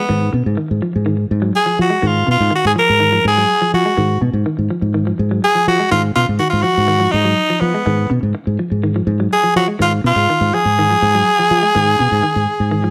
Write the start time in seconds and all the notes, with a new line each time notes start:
Already playing: B3
0.09 G#2 D#3
0.33 B2 C#3
0.46 G#2
0.57 D#3
0.71 G#2
0.82 F3
0.96 G#2
1.06 D#3
1.31 G#2
1.42 F#3
1.56 G#4
1.66 F3
1.79 F3 F#4
1.90 G#3
2.02 G#2 D#3 F4
2.27 B2 C#3
2.31 F4
2.41 G#2
2.51 D#3
2.56 F#4
2.65 G#2 G#4
2.76 F3 A#4
2.90 G#2
3.00 D#3
3.13 F3
3.25 G#2 G#4
3.38 F#3
3.62 F3
3.74 F3 F#4
3.86 G#3
3.97 G#2 D#3
4.21 G#2 B2
4.33 G#2
4.46 D#3
4.59 G#2
4.70 F3
4.82 G#2
4.94 D#3
5.07 F3
5.19 G#2
5.31 F#3
5.44 G#4
5.55 F3
5.68 F3 F#4
5.80 G#3
5.91 G#2 D#3 F4
6.15 B2 C#3 F4
6.29 G#2
6.39 D#3 F#4
6.50 G#2 F4
6.62 F3 F#4
6.78 G#2
6.88 D#3
7.00 F3
7.11 G#2 D#4
7.25 F#3
7.50 F3
7.60 F3 B3
7.74 G#3
7.86 G#2 D#3
8.10 B2 C#3
8.23 G#2
8.35 muted clean electric guitar stroke
8.47 G#2
8.59 F3
8.71 G#2
8.83 D#3
8.96 F3
9.07 G#2
9.20 F#3
9.33 G#4
9.44 F3
9.56 F3 F#4
9.68 G#3
9.79 G#2 D#3 F4
10.04 B2 C#3 F4
10.16 G#2
10.30 D#3
10.41 G#2
10.54 F3 G#4
10.65 G#2
10.79 D#3
10.91 F3
11.02 G#2
11.15 F#3
11.39 F3
11.51 F3
11.63 G#3
11.75 G#2 D#3
11.99 B2 C#3
12.12 G#2
12.23 D#3
12.36 G#2
12.60 G#2
12.71 D#3
12.84 F3